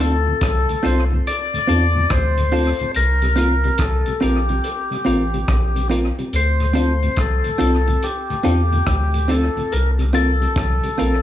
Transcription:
Already playing: D2
0.00 C4 D4 F4 A4
0.27 D2 A2
0.41 C2, kick, cross-stick, closed hi-hat
0.69 D2 A2, closed hi-hat
0.83 C2 C4 D4 F4 A4 C5, closed hi-hat
1.11 D2 A2, muted clean electric guitar stroke
1.27 D5, closed hi-hat
1.53 D2 A2, closed hi-hat
1.67 E2 C4 D4 F4 A4, closed hi-hat
1.95 D2 A2
2.10 D2 C5, kick, cross-stick, closed hi-hat
2.38 D2 A2, closed hi-hat
2.52 C4 D4 F4 A4, open hi-hat
2.79 D2 A2, closed hi-hat
2.94 C2 A#4, closed hi-hat
3.22 C3 G3, closed hi-hat
3.36 A#3 C4 F4 A#4, closed hi-hat
3.64 C3 G3, closed hi-hat
3.78 C2 A4, kick, cross-stick, closed hi-hat
4.06 C3 G3, closed hi-hat
4.21 A#1 A#3 C4 F4 G4 A#4, closed hi-hat
4.49 C3 G3, muted clean electric guitar stroke, closed hi-hat
4.64 closed hi-hat
4.91 C3 G3, closed hi-hat
5.05 A1 A#3 C4 F4 A#4, closed hi-hat
5.34 C3 G3, closed hi-hat
5.48 A#1, kick, cross-stick, closed hi-hat
5.76 C3 G3, closed hi-hat
5.90 A#3 C4 F4 A#4, closed hi-hat
6.19 C3 G3, closed hi-hat
6.33 D2 C5, closed hi-hat
6.60 D2 A2, closed hi-hat
6.73 C4 D4 F4 A4, closed hi-hat
7.03 D2 A2, closed hi-hat
7.16 C2, kick, cross-stick, closed hi-hat
7.21 A4
7.44 D2 A2, closed hi-hat
7.58 C2 C4 D4 F4 A4, closed hi-hat
7.87 D2 A2, muted clean electric guitar stroke, closed hi-hat
8.03 G4, closed hi-hat
8.30 D2 A2, closed hi-hat
8.43 E2 C4 D4 F4 A4, closed hi-hat
8.72 D2 A2, closed hi-hat
8.87 D2, kick, cross-stick, closed hi-hat
9.14 D2 A2, closed hi-hat
9.28 C4 D4 F4 A4, closed hi-hat
9.56 D2 A2, closed hi-hat
9.72 C2 A#4, closed hi-hat
9.98 C3 G3, closed hi-hat
10.13 A#3 C4 F4 A4 A#4, closed hi-hat
10.41 C3 G3, closed hi-hat
10.56 C2, kick, cross-stick, closed hi-hat
10.83 C3 G3, closed hi-hat
10.97 A#1 A#3 C4 F4 A#4, closed hi-hat

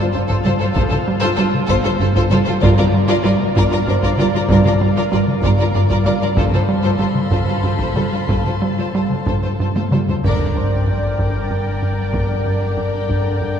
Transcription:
Already playing: C5 D5 F5 A5
0.01 F4
0.12 G1 G2 F4 A4 C5
0.28 G2 F4 A4 C5, taiko
0.43 G1 G2 G3 F4 A4 C5, taiko mid
0.59 G2 F4 A4 C5
0.74 G1 G2 F3 F4 A4 C5, taiko
0.90 G2 F4 A4 C5, taiko mid
1.08 G3
1.21 G2 F4 A4 C5
1.36 G1 G2 G3 F4 A4 C5
1.54 taiko mid
1.67 G1 G2 F4 A4 C5, taiko
1.83 G2 F4 A4 C5
1.99 G1 G2 F4 A4 C5
2.14 G2 F4 A4 C5, taiko
2.30 G1 G2 G3 F4 A4 C5, taiko mid
2.45 G2 F4 A4 C5
2.61 G1 G2 F3 F4 A#4 D5 F5, taiko
2.77 G2 F4 A#4 D5, taiko mid
2.94 G3
3.08 G2 F4 A#4 D5
3.23 G1 G2 G3 F4 A#4 D5
3.40 taiko mid
3.55 G1 G2 F4 A#4 D5, taiko
3.70 G2 F4 A#4 D5
3.86 G1 G2 F4 A#4 C5 D5
4.02 G2 F4 A#4 D5, taiko
4.18 G1 G2 G3 F4 A#4 D5, taiko mid
4.33 G2 F4 A#4 D5
4.49 G1 G2 F3 F4 A#4 D5, taiko
4.64 G2 F4 A#4 D5, taiko mid
4.81 G3
4.96 G2 F4 A#4 D5
5.11 G1 G2 G3 F4 A#4 D5
5.27 taiko mid
5.42 G1 G2 F4 A#4 D5, taiko
5.58 G2 F4 A#4 D5
5.74 G1 G2 F4 A#4 D5
5.89 G2 F4 A#4 D5, taiko
6.04 G1 G2 G3 F4 A#4 D5 F5, taiko mid
6.20 G2 F4 A#4 D5
6.35 G1 G2 F3 F4 A4 C5 F5 A5 B5 C6, taiko
6.51 G2 F4 A4 C5, taiko mid
6.69 G3
6.83 G2 F4 A4 C5
6.98 G1 G2 G3 F4 A4 C5
7.15 taiko mid
7.29 G1 G2 F4 A4 C5, taiko
7.46 G2 F4 A4 C5
7.61 G1 G2 F4 A4 C5
7.77 G2 F4 A4, taiko
7.81 C5
7.93 G1 G2 G3 F4 A4 C5, taiko mid
7.97 A5
8.10 G2 F4 A4
8.14 C5
8.27 G1 G2 F3 F4 A4, taiko
8.31 C5
8.43 G2 F4 A4 C5, taiko mid
8.51 C6
8.62 G3
8.76 G2 F4 A4 C5
8.93 G1 G2 G3 F4 A4 C5
9.10 taiko mid
9.26 G1 G2 F4 A4 C5, taiko
9.42 G2 F4 A4 C5
9.58 G1 G2 F4 A4 C5
9.75 G2 F4 A4 C5, taiko high
9.91 G1 G2 G3 F4 A4 C5, taiko mid
10.08 G2 F4 A4 C5, taiko low
10.23 G1 G2 D3 D4 A#4 D5 G5, taiko, sub drop
10.55 G2 C5 C6
10.87 G2
11.19 G2, taiko
11.50 G2
11.82 G2
12.13 G2, taiko
12.46 G2
12.77 G2
13.09 G2, taiko
13.42 G2

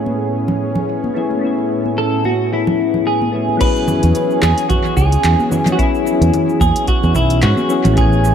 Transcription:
Already playing: A2 A3 B3 C#4 E4 G#4
0.06 high conga
0.48 low conga
0.75 low conga
1.04 high conga
1.14 A3 B3 C#4 E4 G#4
1.31 high conga
1.39 A3 B3 C#4
1.45 E4 G#4
1.86 high conga
1.98 A4
2.24 F#4, high conga
2.53 E4
2.67 low conga
2.94 low conga
3.07 G#4
3.22 high conga
3.32 A3 B3 C#4 E4 G#4
3.49 high conga
3.57 E3 F#3 B3 C#4 G#4 B4, kick, closed hi-hat, crash, cabasa
3.63 E4 G#4
3.76 cabasa
3.88 low conga, cabasa
4.03 E2, closed hi-hat, cabasa
4.15 closed hi-hat, cabasa
4.31 cabasa
4.42 E2 G#4, clap, high conga, cabasa
4.58 closed hi-hat, cabasa
4.69 F#4, kick, closed hi-hat, low conga, cabasa
4.85 cabasa
4.97 C#2 G#4, kick, cabasa
5.12 closed hi-hat, cabasa
5.24 E2, clap, closed hi-hat, cabasa
5.40 high conga, cabasa
5.50 F#3 B3 C#4 E4 G#4, low conga, cabasa
5.66 closed hi-hat, high conga, low conga, cabasa
5.72 F#3 F#4
5.77 B3 C#4 E4, kick, closed hi-hat, cabasa
5.83 G#4
5.95 cabasa
6.07 cabasa
6.21 E2, closed hi-hat, cabasa
6.34 closed hi-hat, low conga, cabasa
6.49 cabasa
6.61 E2 G#4, kick, high conga, cabasa
6.76 closed hi-hat, cabasa
6.88 F#4, kick, closed hi-hat, cabasa
7.03 E2, cabasa
7.15 B1 E4, kick, low conga, cabasa
7.30 closed hi-hat, cabasa
7.42 G#2 F#4, clap, closed hi-hat, cabasa
7.57 high conga, cabasa
7.68 F#3 B3 C#4 E4 G#4, cabasa
7.85 A1, closed hi-hat, high conga, low conga, cabasa
7.94 A3 B3 C#4 G#5, kick, closed hi-hat, low conga, cabasa
7.98 E4 G#4 G#5
8.13 cabasa
8.24 cabasa

